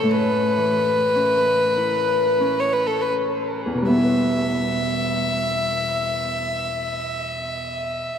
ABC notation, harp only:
X:1
M:3/4
L:1/8
Q:1/4=42
K:Edor
V:1 name="Harp"
A,, E, C E C2 | [E,,B,,G,B,EB]6 |]